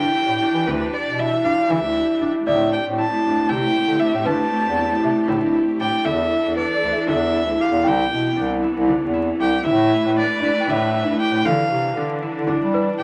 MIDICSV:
0, 0, Header, 1, 7, 480
1, 0, Start_track
1, 0, Key_signature, 0, "minor"
1, 0, Tempo, 513259
1, 628, Time_signature, 7, 3, 24, 8
1, 12188, End_track
2, 0, Start_track
2, 0, Title_t, "Violin"
2, 0, Program_c, 0, 40
2, 0, Note_on_c, 0, 79, 95
2, 623, Note_on_c, 0, 71, 79
2, 637, Note_off_c, 0, 79, 0
2, 872, Note_on_c, 0, 74, 76
2, 886, Note_off_c, 0, 71, 0
2, 1118, Note_on_c, 0, 76, 85
2, 1132, Note_off_c, 0, 74, 0
2, 1350, Note_on_c, 0, 77, 89
2, 1364, Note_off_c, 0, 76, 0
2, 1591, Note_on_c, 0, 76, 95
2, 1605, Note_off_c, 0, 77, 0
2, 2129, Note_off_c, 0, 76, 0
2, 2312, Note_on_c, 0, 76, 84
2, 2533, Note_off_c, 0, 76, 0
2, 2550, Note_on_c, 0, 79, 80
2, 2657, Note_off_c, 0, 79, 0
2, 2800, Note_on_c, 0, 81, 86
2, 3263, Note_on_c, 0, 79, 100
2, 3277, Note_off_c, 0, 81, 0
2, 3737, Note_on_c, 0, 76, 84
2, 3751, Note_off_c, 0, 79, 0
2, 3982, Note_on_c, 0, 81, 89
2, 3996, Note_off_c, 0, 76, 0
2, 5183, Note_off_c, 0, 81, 0
2, 5426, Note_on_c, 0, 79, 86
2, 5658, Note_on_c, 0, 76, 90
2, 5672, Note_off_c, 0, 79, 0
2, 6136, Note_off_c, 0, 76, 0
2, 6141, Note_on_c, 0, 74, 85
2, 6589, Note_off_c, 0, 74, 0
2, 6631, Note_on_c, 0, 76, 94
2, 7117, Note_on_c, 0, 77, 78
2, 7131, Note_off_c, 0, 76, 0
2, 7359, Note_on_c, 0, 79, 93
2, 7373, Note_off_c, 0, 77, 0
2, 7892, Note_off_c, 0, 79, 0
2, 8799, Note_on_c, 0, 79, 89
2, 9016, Note_off_c, 0, 79, 0
2, 9031, Note_on_c, 0, 76, 95
2, 9475, Note_off_c, 0, 76, 0
2, 9519, Note_on_c, 0, 74, 92
2, 10004, Note_on_c, 0, 76, 89
2, 10018, Note_off_c, 0, 74, 0
2, 10463, Note_off_c, 0, 76, 0
2, 10468, Note_on_c, 0, 79, 91
2, 10706, Note_on_c, 0, 77, 82
2, 10720, Note_off_c, 0, 79, 0
2, 11247, Note_off_c, 0, 77, 0
2, 12152, Note_on_c, 0, 79, 88
2, 12188, Note_off_c, 0, 79, 0
2, 12188, End_track
3, 0, Start_track
3, 0, Title_t, "Celesta"
3, 0, Program_c, 1, 8
3, 0, Note_on_c, 1, 79, 65
3, 960, Note_off_c, 1, 79, 0
3, 2309, Note_on_c, 1, 74, 70
3, 3590, Note_off_c, 1, 74, 0
3, 3977, Note_on_c, 1, 71, 66
3, 4719, Note_on_c, 1, 76, 46
3, 5263, Note_off_c, 1, 71, 0
3, 5874, Note_off_c, 1, 76, 0
3, 6137, Note_on_c, 1, 71, 53
3, 6301, Note_on_c, 1, 74, 46
3, 6476, Note_on_c, 1, 76, 45
3, 7331, Note_on_c, 1, 79, 56
3, 7424, Note_off_c, 1, 71, 0
3, 7566, Note_off_c, 1, 74, 0
3, 7713, Note_off_c, 1, 76, 0
3, 8622, Note_off_c, 1, 79, 0
3, 9729, Note_on_c, 1, 74, 51
3, 9916, Note_on_c, 1, 79, 42
3, 10901, Note_off_c, 1, 74, 0
3, 11055, Note_off_c, 1, 79, 0
3, 11915, Note_on_c, 1, 71, 67
3, 12188, Note_off_c, 1, 71, 0
3, 12188, End_track
4, 0, Start_track
4, 0, Title_t, "Harp"
4, 0, Program_c, 2, 46
4, 0, Note_on_c, 2, 62, 61
4, 0, Note_on_c, 2, 64, 75
4, 144, Note_off_c, 2, 64, 0
4, 148, Note_on_c, 2, 64, 72
4, 385, Note_off_c, 2, 62, 0
4, 389, Note_on_c, 2, 62, 68
4, 625, Note_off_c, 2, 62, 0
4, 628, Note_on_c, 2, 62, 77
4, 1104, Note_off_c, 2, 64, 0
4, 1108, Note_on_c, 2, 64, 81
4, 1347, Note_off_c, 2, 62, 0
4, 1351, Note_on_c, 2, 62, 75
4, 1583, Note_off_c, 2, 64, 0
4, 1587, Note_on_c, 2, 64, 77
4, 1822, Note_off_c, 2, 64, 0
4, 1826, Note_on_c, 2, 64, 75
4, 2065, Note_off_c, 2, 62, 0
4, 2069, Note_on_c, 2, 62, 74
4, 2311, Note_off_c, 2, 62, 0
4, 2315, Note_on_c, 2, 62, 80
4, 2784, Note_off_c, 2, 64, 0
4, 2787, Note_on_c, 2, 64, 81
4, 3033, Note_off_c, 2, 62, 0
4, 3037, Note_on_c, 2, 62, 72
4, 3263, Note_off_c, 2, 64, 0
4, 3267, Note_on_c, 2, 64, 80
4, 3501, Note_off_c, 2, 64, 0
4, 3505, Note_on_c, 2, 64, 69
4, 3737, Note_off_c, 2, 62, 0
4, 3741, Note_on_c, 2, 62, 77
4, 3976, Note_off_c, 2, 62, 0
4, 3980, Note_on_c, 2, 62, 81
4, 4457, Note_off_c, 2, 64, 0
4, 4461, Note_on_c, 2, 64, 83
4, 4692, Note_off_c, 2, 62, 0
4, 4696, Note_on_c, 2, 62, 76
4, 4937, Note_off_c, 2, 64, 0
4, 4941, Note_on_c, 2, 64, 87
4, 5176, Note_off_c, 2, 64, 0
4, 5180, Note_on_c, 2, 64, 76
4, 5419, Note_off_c, 2, 62, 0
4, 5423, Note_on_c, 2, 62, 82
4, 5657, Note_off_c, 2, 64, 0
4, 5661, Note_on_c, 2, 64, 82
4, 6142, Note_off_c, 2, 62, 0
4, 6145, Note_on_c, 2, 62, 73
4, 6385, Note_off_c, 2, 64, 0
4, 6388, Note_on_c, 2, 64, 62
4, 6617, Note_off_c, 2, 62, 0
4, 6621, Note_on_c, 2, 62, 82
4, 6855, Note_off_c, 2, 64, 0
4, 6859, Note_on_c, 2, 64, 72
4, 7106, Note_on_c, 2, 67, 70
4, 7339, Note_off_c, 2, 64, 0
4, 7342, Note_on_c, 2, 64, 83
4, 7818, Note_off_c, 2, 62, 0
4, 7822, Note_on_c, 2, 62, 76
4, 8063, Note_off_c, 2, 64, 0
4, 8067, Note_on_c, 2, 64, 70
4, 8304, Note_off_c, 2, 62, 0
4, 8308, Note_on_c, 2, 62, 78
4, 8538, Note_off_c, 2, 64, 0
4, 8542, Note_on_c, 2, 64, 80
4, 8784, Note_off_c, 2, 67, 0
4, 8788, Note_on_c, 2, 67, 73
4, 9024, Note_off_c, 2, 64, 0
4, 9028, Note_on_c, 2, 64, 89
4, 9504, Note_off_c, 2, 62, 0
4, 9508, Note_on_c, 2, 62, 82
4, 9747, Note_off_c, 2, 64, 0
4, 9751, Note_on_c, 2, 64, 65
4, 9985, Note_off_c, 2, 62, 0
4, 9989, Note_on_c, 2, 62, 83
4, 10225, Note_off_c, 2, 64, 0
4, 10229, Note_on_c, 2, 64, 75
4, 10473, Note_off_c, 2, 67, 0
4, 10477, Note_on_c, 2, 67, 74
4, 10712, Note_on_c, 2, 52, 76
4, 11188, Note_off_c, 2, 62, 0
4, 11192, Note_on_c, 2, 62, 69
4, 11427, Note_off_c, 2, 64, 0
4, 11431, Note_on_c, 2, 64, 67
4, 11666, Note_off_c, 2, 62, 0
4, 11670, Note_on_c, 2, 62, 77
4, 11911, Note_off_c, 2, 64, 0
4, 11915, Note_on_c, 2, 64, 71
4, 12150, Note_off_c, 2, 67, 0
4, 12153, Note_on_c, 2, 67, 74
4, 12188, Note_off_c, 2, 52, 0
4, 12188, Note_off_c, 2, 62, 0
4, 12188, Note_off_c, 2, 64, 0
4, 12188, Note_off_c, 2, 67, 0
4, 12188, End_track
5, 0, Start_track
5, 0, Title_t, "String section"
5, 0, Program_c, 3, 48
5, 0, Note_on_c, 3, 52, 57
5, 0, Note_on_c, 3, 62, 59
5, 0, Note_on_c, 3, 67, 68
5, 2273, Note_off_c, 3, 52, 0
5, 2275, Note_off_c, 3, 62, 0
5, 2280, Note_off_c, 3, 67, 0
5, 2315, Note_on_c, 3, 67, 70
5, 2317, Note_on_c, 3, 57, 63
5, 2324, Note_on_c, 3, 60, 61
5, 5635, Note_off_c, 3, 57, 0
5, 5635, Note_off_c, 3, 67, 0
5, 5639, Note_off_c, 3, 60, 0
5, 5652, Note_on_c, 3, 62, 63
5, 5653, Note_on_c, 3, 69, 71
5, 5655, Note_on_c, 3, 52, 68
5, 7320, Note_off_c, 3, 52, 0
5, 7321, Note_off_c, 3, 62, 0
5, 7321, Note_off_c, 3, 69, 0
5, 7331, Note_on_c, 3, 52, 64
5, 7332, Note_on_c, 3, 59, 59
5, 7340, Note_on_c, 3, 48, 64
5, 9003, Note_off_c, 3, 59, 0
5, 9007, Note_off_c, 3, 48, 0
5, 9043, Note_on_c, 3, 57, 66
5, 9043, Note_on_c, 3, 71, 79
5, 10699, Note_off_c, 3, 57, 0
5, 10699, Note_off_c, 3, 71, 0
5, 10705, Note_on_c, 3, 50, 68
5, 10707, Note_on_c, 3, 62, 63
5, 12188, Note_off_c, 3, 50, 0
5, 12188, Note_off_c, 3, 52, 0
5, 12188, Note_off_c, 3, 62, 0
5, 12188, End_track
6, 0, Start_track
6, 0, Title_t, "Bass clarinet"
6, 0, Program_c, 4, 71
6, 261, Note_on_c, 4, 45, 76
6, 356, Note_off_c, 4, 45, 0
6, 500, Note_on_c, 4, 52, 81
6, 596, Note_off_c, 4, 52, 0
6, 619, Note_on_c, 4, 38, 95
6, 808, Note_off_c, 4, 38, 0
6, 984, Note_on_c, 4, 47, 80
6, 1263, Note_off_c, 4, 47, 0
6, 1345, Note_on_c, 4, 43, 78
6, 1439, Note_off_c, 4, 43, 0
6, 1582, Note_on_c, 4, 52, 90
6, 1677, Note_off_c, 4, 52, 0
6, 1694, Note_on_c, 4, 38, 75
6, 1884, Note_off_c, 4, 38, 0
6, 2063, Note_on_c, 4, 43, 72
6, 2157, Note_off_c, 4, 43, 0
6, 2304, Note_on_c, 4, 45, 91
6, 2582, Note_off_c, 4, 45, 0
6, 2663, Note_on_c, 4, 45, 89
6, 2850, Note_off_c, 4, 45, 0
6, 3033, Note_on_c, 4, 43, 77
6, 3216, Note_off_c, 4, 43, 0
6, 3261, Note_on_c, 4, 48, 93
6, 3448, Note_off_c, 4, 48, 0
6, 3618, Note_on_c, 4, 50, 78
6, 3714, Note_off_c, 4, 50, 0
6, 3871, Note_on_c, 4, 45, 86
6, 3962, Note_off_c, 4, 45, 0
6, 3984, Note_on_c, 4, 43, 91
6, 4169, Note_off_c, 4, 43, 0
6, 4345, Note_on_c, 4, 40, 89
6, 4623, Note_off_c, 4, 40, 0
6, 4705, Note_on_c, 4, 48, 77
6, 4797, Note_off_c, 4, 48, 0
6, 4939, Note_on_c, 4, 45, 82
6, 5034, Note_off_c, 4, 45, 0
6, 5057, Note_on_c, 4, 43, 73
6, 5245, Note_off_c, 4, 43, 0
6, 5423, Note_on_c, 4, 45, 68
6, 5516, Note_off_c, 4, 45, 0
6, 5659, Note_on_c, 4, 40, 101
6, 5939, Note_off_c, 4, 40, 0
6, 6020, Note_on_c, 4, 40, 74
6, 6207, Note_off_c, 4, 40, 0
6, 6383, Note_on_c, 4, 38, 73
6, 6476, Note_off_c, 4, 38, 0
6, 6621, Note_on_c, 4, 40, 92
6, 6977, Note_on_c, 4, 38, 74
6, 6991, Note_off_c, 4, 40, 0
6, 7072, Note_off_c, 4, 38, 0
6, 7216, Note_on_c, 4, 40, 90
6, 7312, Note_off_c, 4, 40, 0
6, 7341, Note_on_c, 4, 36, 102
6, 7528, Note_off_c, 4, 36, 0
6, 7579, Note_on_c, 4, 47, 76
6, 7766, Note_off_c, 4, 47, 0
6, 7819, Note_on_c, 4, 36, 87
6, 8099, Note_off_c, 4, 36, 0
6, 8175, Note_on_c, 4, 36, 90
6, 8364, Note_off_c, 4, 36, 0
6, 8426, Note_on_c, 4, 40, 89
6, 8703, Note_off_c, 4, 40, 0
6, 8778, Note_on_c, 4, 36, 86
6, 8966, Note_off_c, 4, 36, 0
6, 9020, Note_on_c, 4, 45, 107
6, 9300, Note_off_c, 4, 45, 0
6, 9387, Note_on_c, 4, 45, 90
6, 9572, Note_off_c, 4, 45, 0
6, 9735, Note_on_c, 4, 43, 81
6, 9832, Note_off_c, 4, 43, 0
6, 9979, Note_on_c, 4, 45, 101
6, 10341, Note_on_c, 4, 43, 91
6, 10355, Note_off_c, 4, 45, 0
6, 10436, Note_off_c, 4, 43, 0
6, 10579, Note_on_c, 4, 45, 74
6, 10675, Note_off_c, 4, 45, 0
6, 10694, Note_on_c, 4, 50, 106
6, 10885, Note_off_c, 4, 50, 0
6, 10934, Note_on_c, 4, 48, 86
6, 11125, Note_off_c, 4, 48, 0
6, 11173, Note_on_c, 4, 50, 90
6, 11456, Note_off_c, 4, 50, 0
6, 11542, Note_on_c, 4, 50, 88
6, 11730, Note_off_c, 4, 50, 0
6, 11784, Note_on_c, 4, 55, 75
6, 12064, Note_off_c, 4, 55, 0
6, 12142, Note_on_c, 4, 47, 84
6, 12188, Note_off_c, 4, 47, 0
6, 12188, End_track
7, 0, Start_track
7, 0, Title_t, "Frame drum"
7, 152, Note_on_c, 9, 64, 19
7, 246, Note_off_c, 9, 64, 0
7, 630, Note_on_c, 9, 64, 58
7, 724, Note_off_c, 9, 64, 0
7, 1595, Note_on_c, 9, 64, 53
7, 1689, Note_off_c, 9, 64, 0
7, 1834, Note_on_c, 9, 64, 15
7, 1928, Note_off_c, 9, 64, 0
7, 2310, Note_on_c, 9, 64, 46
7, 2403, Note_off_c, 9, 64, 0
7, 3266, Note_on_c, 9, 64, 51
7, 3359, Note_off_c, 9, 64, 0
7, 3500, Note_on_c, 9, 64, 16
7, 3594, Note_off_c, 9, 64, 0
7, 3975, Note_on_c, 9, 64, 52
7, 4068, Note_off_c, 9, 64, 0
7, 4703, Note_on_c, 9, 64, 19
7, 4796, Note_off_c, 9, 64, 0
7, 4939, Note_on_c, 9, 64, 67
7, 5032, Note_off_c, 9, 64, 0
7, 5660, Note_on_c, 9, 64, 54
7, 5753, Note_off_c, 9, 64, 0
7, 5895, Note_on_c, 9, 64, 18
7, 5989, Note_off_c, 9, 64, 0
7, 6616, Note_on_c, 9, 64, 59
7, 6710, Note_off_c, 9, 64, 0
7, 7104, Note_on_c, 9, 64, 16
7, 7197, Note_off_c, 9, 64, 0
7, 7347, Note_on_c, 9, 64, 52
7, 7441, Note_off_c, 9, 64, 0
7, 8304, Note_on_c, 9, 64, 53
7, 8398, Note_off_c, 9, 64, 0
7, 8783, Note_on_c, 9, 64, 18
7, 8876, Note_off_c, 9, 64, 0
7, 9018, Note_on_c, 9, 64, 52
7, 9112, Note_off_c, 9, 64, 0
7, 9985, Note_on_c, 9, 64, 51
7, 10078, Note_off_c, 9, 64, 0
7, 10468, Note_on_c, 9, 64, 18
7, 10562, Note_off_c, 9, 64, 0
7, 10710, Note_on_c, 9, 64, 60
7, 10804, Note_off_c, 9, 64, 0
7, 10950, Note_on_c, 9, 64, 20
7, 11043, Note_off_c, 9, 64, 0
7, 11664, Note_on_c, 9, 64, 59
7, 11757, Note_off_c, 9, 64, 0
7, 11912, Note_on_c, 9, 64, 18
7, 12005, Note_off_c, 9, 64, 0
7, 12149, Note_on_c, 9, 64, 19
7, 12188, Note_off_c, 9, 64, 0
7, 12188, End_track
0, 0, End_of_file